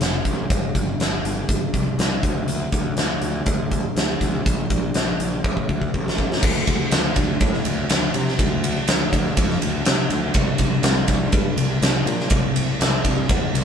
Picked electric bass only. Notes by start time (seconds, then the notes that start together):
0.00 F1
0.25 A1
0.50 G1
0.74 G1
0.99 G1
1.23 G1
1.48 G1
1.73 C2
1.98 C2
2.22 D2
2.46 D2
2.72 D2
2.97 D2
3.21 D2
3.46 D2
3.96 D2
4.21 D2
4.46 A#1
4.70 A#1
4.95 A#1
5.19 A#1
5.44 A1
5.69 D2
5.94 A1
6.43 D2
6.67 D2
6.92 D2
7.17 D2
7.40 A2
7.66 D2
7.90 D2
8.14 C3
8.39 D2
8.88 D2
9.12 D2
9.36 F2
9.62 D2
9.87 C3
10.10 D2
10.34 C2
10.58 C2
10.82 C2
11.07 C2
11.33 G2
11.57 C2
11.81 C2
12.06 A#2
12.30 C2
12.80 C2
13.04 C2
13.29 E2
13.54 C2